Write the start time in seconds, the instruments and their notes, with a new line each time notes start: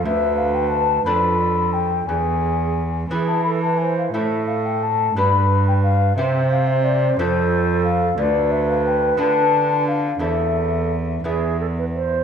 0.04 cello D2, lute D2, flute B4 E5
0.38 flute F5
0.55 flute G5
0.70 flute A5
1.05 cello F2, lute F2 D4 F4 B4, flute A4 B5
1.73 flute G5
2.07 cello E2, lute E2, flute G#4 G#5
3.10 cello E3, lute E3 B3 E4 B4, flute G#4
3.27 flute A5
3.44 flute A4 B5
3.62 flute B4 A5
3.78 flute C5 G#5
3.98 flute F5
4.12 cello A2, lute A2 C4 E4 A4, flute A4 E5
4.47 flute F5
4.66 flute G5
4.83 flute A5
5.15 cello G2, lute G2 D4 G4 B4, flute B4 B5
5.68 flute G5
5.83 flute F5
6.16 cello C3, lute C3 C4 G4 C5, flute C5 E5
6.51 flute F5
6.68 flute E5
6.84 flute D5
7.17 cello F2, lute F2 C4 F4 A4, flute A4 C5
7.84 flute F5
8.18 lute D2, cello D2, flute B4 D5
8.51 flute E5
8.70 flute F5
8.86 flute G5
9.17 lute D3 B3 F4 B4, cello D3, flute A5
9.88 flute F5
10.19 lute E2 C4 E4 A4, cello E2, flute A4 E5
11.24 lute E2 B3 E4 G#4, cello E2, flute G#4
11.61 flute A4
11.79 flute B4
11.95 flute C5